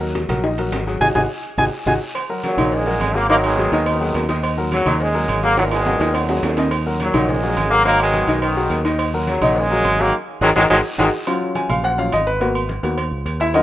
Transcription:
Already playing: D#2
0.01 F#3 F#4 A#4, high conga
0.15 high bongo, high conga, high timbale, short guiro
0.29 A#1 F#3 F#4 A#4, high conga, low conga, high timbale, short guiro
0.44 D#3 D#4 D#5, high bongo, long guiro
0.58 F#3 F#4 A#4, high conga, high timbale
0.72 G#1, high bongo, low bongo, high conga, high timbale, low timbale, short guiro
0.87 F#3 F#4 G#4, short guiro
1.00 G#1 D#4 F#4 G#4 G#5, high bongo, low conga, high timbale, long guiro
1.15 G#1 D#4 F#4 G#4 G#5, high bongo, low conga, high timbale, long guiro
1.58 G#1 D#4 F#4 G#4 G#5, high bongo, low conga, high timbale, long guiro
1.86 G#1 D#4 F#4 G#4 G#5, high bongo, low conga, high timbale, long guiro
2.15 cowbell, high conga, low agogo, long guiro
2.29 F#3 F#4 A#4, high conga
2.43 A#2 C#3 F#3, cowbell, high conga, low agogo, short guiro
2.57 A#1 D#3 D#4 D#5, high conga, low conga, low agogo, short guiro
2.72 C#3 G#3, cowbell, long guiro
2.86 F#3 F#4 A#4, cowbell
3.00 G#1, cowbell, high conga, low timbale, low agogo, short guiro
3.15 F#3 A#3 F#4 G#4, short guiro
3.29 D#3 F#3 A#3 D#4 D#5, cowbell, high conga, low agogo, long guiro
3.44 B2 D#3 G#3, high conga, low agogo
3.58 F#3 F#4 G#4, cowbell, high conga, short guiro
3.72 D#2 D#3 D#4 D#5, cowbell, low agogo, short guiro
3.86 F#2 B2 D#3, cowbell, high conga, low agogo, long guiro
4.01 F#3 F#4 G#4, high conga
4.15 D#2, cowbell, high conga, low timbale, low agogo, short guiro
4.29 D#3 D#4 D#5, cowbell, high conga, low agogo, short guiro
4.43 cowbell, high conga, low agogo, long guiro
4.58 F#3 F#4 A#4, high conga
4.72 A#2 C#3 F#3, cowbell, high conga, low agogo, short guiro
4.86 D#2 D#3 D#4 D#5, high conga, low conga, low agogo, short guiro
5.00 C#3 G#3, cowbell, long guiro
5.14 F#3 F#4 A#4, cowbell, high conga
5.28 G#1, cowbell, high conga, low agogo, short guiro
5.43 F#3 A#3 F#4 G#4, short guiro
5.57 A#2 B2 D#3 F#3 D#4 D#5, cowbell, high conga, high timbale, low agogo, long guiro
5.71 B2 D#3 G#3, high conga, high timbale, low agogo
5.86 F#3 F#4 G#4, cowbell, high conga, low timbale, short guiro
6.00 D#2 D#3 D#4 D#5, cowbell, high conga, high timbale, low agogo, short guiro
6.14 A#2 B2 F#3, cowbell, high conga, low timbale, low agogo, long guiro
6.29 F#3 F#4 G#4, high conga, low timbale
6.43 D#2, cowbell, low timbale, low agogo, short guiro
6.57 D#3 D#4 D#5, cowbell, high conga, low timbale, low agogo, short guiro
6.71 cowbell, high conga, low agogo, long guiro
6.86 F#3 F#4 A#4, high conga
7.00 A#2 C#3 F#3, cowbell, high conga, low agogo, short guiro
7.14 A#1 D#3 D#4 D#5, high conga, low conga, low agogo, short guiro
7.28 C#3 G#3, cowbell, high conga, low conga, long guiro
7.43 F#3 F#4 A#4, cowbell, high conga
7.56 G#1, cowbell, high conga, low timbale, low agogo, short guiro
7.71 F#3 A#3 F#4 G#4, short guiro
7.85 D#3 F#3 A#3 D#4 D#5, cowbell, high conga, low agogo, long guiro
7.99 B2 D#3 G#3, high conga, low agogo
8.14 F#3 F#4 G#4, cowbell, high conga, short guiro
8.27 B1 D#3 D#4 D#5, cowbell, low agogo, short guiro
8.42 F#2 B2 D#3, cowbell, high conga, low agogo, long guiro
8.56 F#3 F#4 G#4, high conga
8.70 D#2, cowbell, high conga, low agogo, short guiro
8.85 D#3 D#4 D#5, cowbell, high conga, low agogo, short guiro
8.99 cowbell, high conga, low agogo, long guiro
9.13 F#3 F#4 A#4, high conga
9.27 A#2 C#3 F#3, cowbell, high conga, low agogo, short guiro
9.41 A#1 D#3 D#4 D#5, high conga, low conga, low agogo, short guiro
9.56 C#3 G#3, cowbell, long guiro
9.70 F#3 F#4 A#4, cowbell, high conga
9.84 G#1, cowbell, high conga, low agogo, short guiro
9.99 D#3 F#3 A#3 F#4 G#4, high conga, short guiro
10.41 G#1 D#3 F#3 G#3 D#4 F#4 G#4, cowbell, high conga, high timbale, long guiro
10.56 G#1 D#3 F#3 G#3 D#4 F#4 G#4, cowbell, high conga, high timbale, long guiro
10.70 G#1 D#3 F#3 G#3 D#4 F#4 G#4, cowbell, high conga, high timbale, long guiro
10.98 G#1 D#3 F#3 G#3 D#4 F#4 G#4, cowbell, high conga, high timbale, long guiro
11.27 F#3 C#4 F4, cowbell, high conga, low agogo
11.41 high conga
11.55 G#5, cowbell, high conga, low agogo
11.69 A#1 F5, high conga, low conga, low agogo
11.84 F#5, cowbell, high conga
11.98 F#3 C#4 F4 F5, cowbell, high conga
12.12 G#1 D#5, cowbell, high conga, low timbale, low agogo
12.27 B4
12.40 A#3 B3 F#4, cowbell, high conga, low agogo
12.55 high conga, low agogo
12.69 cowbell, high conga
12.83 D#2 A#3 B3 F#4, cowbell, high conga, low agogo
12.98 cowbell, high conga, low agogo
13.11 C#2, high conga
13.26 D#2, cowbell, high conga, low agogo
13.40 E4 E5, cowbell, high conga, low agogo
13.54 F#3 C#4 D#4 F4 F#4 A#4 D#5, cowbell, high conga, low agogo

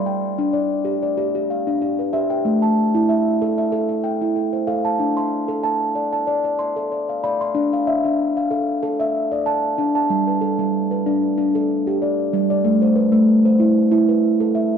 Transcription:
Already playing: G3
0.06 G5
0.38 D4
0.53 D5
0.85 G4
1.02 D5
1.17 G4
1.35 G4
1.50 F5
1.67 D4
1.82 G4
1.99 B4
2.13 G4 E5
2.30 G5
2.45 A3
2.62 A5
2.95 E4
3.09 E5
3.42 A4
3.58 E5
3.72 A4
3.89 A4
4.04 G5
4.22 E4
4.36 A4
4.53 C5
4.67 A4 F5
4.85 A5
4.99 D4
5.17 C6
5.48 A4
5.63 A5
5.95 D5
6.13 A5
6.27 D5
6.44 D5
6.59 C6
6.76 A4
6.92 D5
7.09 F5
7.24 D5 B5
7.41 C6
7.55 D4
7.73 F5
7.87 E5
8.05 D4
8.37 F5
8.51 A4
8.83 A4
9.00 E5
9.32 D5
9.46 A5
9.78 D4
9.95 A5
10.10 G3
10.27 B4
10.41 A4
10.59 G3
10.91 B4
11.06 D4
11.38 D4
11.55 A4
11.87 G4
12.02 D5
12.33 G3
12.50 D5
12.65 A3
12.82 C5
12.96 B4
13.12 A3
13.45 C5
13.60 E4
13.91 E4
14.09 B4
14.40 A4
14.55 E5

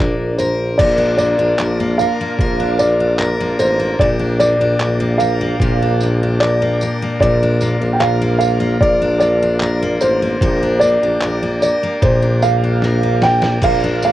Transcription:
Already playing: A#1 A#2 D4 A#4 D5
0.00 A#3
0.38 A#4 C5, tambourine
0.78 A#1 A#2 A#3 F4 A#4 D5, kick, crash
0.98 D4
1.17 A#3 D5, tambourine
1.39 A#1 D4
1.59 A#1 A#4, clap
1.80 A#3
1.98 A#4 F5, tambourine
2.21 A#3
2.38 A#1 A#4, kick
2.60 D4
2.79 A#3 D5, tambourine
3.00 D4
3.19 A#4, clap
3.41 A#3
3.59 A1 A#4 C5, tambourine
3.80 A#3
3.99 A#1 A#2 G4 A#4 D5, kick
4.19 D4
4.40 A#3 D5, tambourine
4.59 A#1 D4
4.79 A#1 A#4, clap
5.00 A#3
5.18 A#4 F5, tambourine
5.41 A#3
5.60 A#1 A#2 A#4, kick
5.82 D4
6.00 A#3, tambourine
6.23 D4
6.40 A#4 D5, clap
6.62 A#3
6.81 A#4, tambourine
7.02 A#3
7.19 A#1 A#2 F4 A#4 D5, kick
7.43 D4
7.61 A#3, tambourine
7.81 A#1 D4
7.93 G5
8.00 A#1 A#4 F5, clap
8.22 A#3
8.39 A#4 F5, tambourine
8.60 A#3
8.80 A#1 A#4 D5, kick
9.02 D4
9.20 A#3 D5, tambourine
9.42 D4
9.60 A#4, clap
9.83 A#3
10.01 A1 A#4 C5, tambourine
10.22 A#3
10.41 A#1 A#2 A#3 G4 A#4, kick
10.63 D4
10.80 A#3 D5, tambourine
11.01 A#1 D4
11.21 A#1 A#4, clap
11.43 A#3
11.62 A#4 D5, tambourine
11.83 A#3
12.02 A#1 A#2 A#4 C5, kick
12.22 D4
12.42 A#3 F5, tambourine
12.64 D4
12.82 A#4, snare
13.03 A#3
13.22 A#4 G5, snare
13.42 A#3, snare
13.62 A#1 A#2 F4 A#4 F5, kick, crash
13.84 D4
14.02 A#3 F5, tambourine

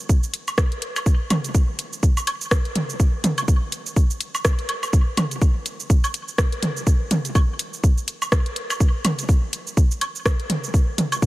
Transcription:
0.09 kick, shaker
0.23 shaker
0.34 closed hi-hat, shaker
0.48 low woodblock, shaker
0.58 kick, cross-stick, shaker
0.72 closed hi-hat
0.82 closed hi-hat
0.96 high woodblock, low woodblock, shaker
1.06 kick, shaker
1.30 closed hi-hat, mid tom, low woodblock, shaker
1.44 closed hi-hat, shaker
1.55 kick, shaker
1.79 closed hi-hat, shaker
1.93 shaker
2.03 kick, shaker
2.17 low woodblock, shaker
2.27 closed hi-hat, high woodblock, shaker
2.41 shaker
2.51 kick, cross-stick, shaker
2.65 closed hi-hat
2.75 closed hi-hat, mid tom
2.90 shaker
3.00 kick, shaker
3.24 closed hi-hat, mid tom, shaker
3.38 closed hi-hat, high woodblock, shaker
3.48 kick, shaker
3.72 closed hi-hat, shaker
3.86 shaker
3.96 kick, shaker
4.10 shaker
4.21 closed hi-hat, shaker
4.35 low woodblock, shaker
4.45 kick, cross-stick, shaker
4.59 closed hi-hat
4.69 closed hi-hat, high woodblock
4.83 low woodblock, shaker
4.93 kick, shaker
5.17 closed hi-hat, mid tom, low woodblock, shaker
5.31 closed hi-hat, shaker
5.42 kick, shaker
5.66 closed hi-hat, shaker
5.80 shaker
5.90 kick, shaker
6.04 high woodblock, shaker
6.14 closed hi-hat, shaker
6.28 shaker
6.38 kick, cross-stick, shaker
6.52 closed hi-hat
6.63 closed hi-hat, mid tom
6.77 shaker
6.87 kick, shaker
7.11 closed hi-hat, mid tom, shaker
7.25 closed hi-hat, shaker
7.35 kick, high woodblock, shaker
7.59 closed hi-hat, shaker
7.73 shaker
7.84 kick, shaker
7.98 shaker
8.08 closed hi-hat, shaker
8.22 low woodblock, shaker
8.32 kick, cross-stick, shaker
8.46 closed hi-hat
8.56 closed hi-hat
8.70 high woodblock, low woodblock, shaker
8.80 kick, shaker
9.05 closed hi-hat, mid tom, low woodblock, shaker
9.19 closed hi-hat, shaker
9.29 kick, shaker
9.53 closed hi-hat, shaker
9.67 shaker
9.77 kick, shaker
9.91 shaker
10.01 closed hi-hat, high woodblock, shaker
10.15 shaker
10.26 kick, cross-stick, shaker
10.40 closed hi-hat
10.50 closed hi-hat, mid tom
10.64 shaker
10.74 kick, shaker
10.98 closed hi-hat, mid tom, shaker
11.12 closed hi-hat, high woodblock, shaker
11.22 kick, shaker

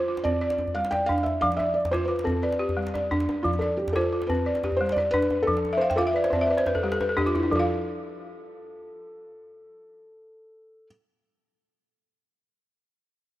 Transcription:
Already playing: C5
0.08 F4
0.17 djembe slap
0.24 C4 D5, djembe tone, djembe bass
0.41 D5
0.50 djembe slap
0.58 djembe tone
0.67 djembe slap, djembe bass
0.75 G3 F5
0.85 djembe slap
0.91 D5 G5, djembe slap, djembe tone
1.06 D4 F5, djembe slap, djembe bass
1.18 djembe slap
1.23 E5, djembe slap, djembe tone
1.41 F3 F5, djembe bass
1.52 djembe slap
1.57 D5 E5, djembe tone
1.74 D5
1.85 djembe slap, djembe bass
1.91 F4 C5, djembe tone
2.05 F4 B4 C5
2.19 djembe slap
2.24 C4 A4, djembe tone, djembe bass
2.42 B4 D5
2.52 djembe slap
2.59 G4
2.69 djembe slap, djembe bass
2.77 G3
2.87 djembe slap
2.94 D5, djembe slap, djembe tone
3.11 D4, djembe slap, djembe bass
3.20 djembe slap
3.29 djembe slap, djembe tone
3.43 F3 F4, djembe bass
3.54 djembe slap
3.59 A4 D5, djembe tone
3.77 G4
3.88 djembe slap, djembe bass
3.93 F4 A4 C5, djembe tone
4.13 F4
4.22 djembe slap
4.27 C4 B4, djembe tone, djembe bass
4.46 D5
4.55 djembe slap
4.63 G4, djembe tone
4.72 djembe slap, djembe bass
4.77 C5
4.81 G3
4.89 D5, djembe slap
4.97 D5, djembe slap, djembe tone
5.11 D4 B4, djembe slap, djembe bass
5.22 djembe slap
5.30 djembe slap, djembe tone
5.43 A4
5.47 F3, djembe bass
5.57 djembe slap
5.65 djembe tone
5.73 E5
5.77 C5
5.82 F5, djembe slap
5.90 G5, djembe slap, djembe bass
5.96 F4 A4 F5, djembe tone
6.07 E5
6.13 B4 D5, djembe slap
6.24 C5, djembe slap
6.30 C4 C5 D5, djembe slap, djembe bass
6.41 E5
6.47 B4 D5
6.57 C5, djembe slap
6.66 B4, djembe slap, djembe tone
6.75 A4, djembe bass
6.83 G3 G4, djembe slap
6.92 A4, djembe slap
7.00 B4, djembe tone
7.09 A4
7.17 D4 G4, djembe bass
7.26 F4, djembe slap
7.35 E4, djembe slap, djembe tone
7.43 D4
7.51 F3 A4, djembe bass
7.56 F4 F5

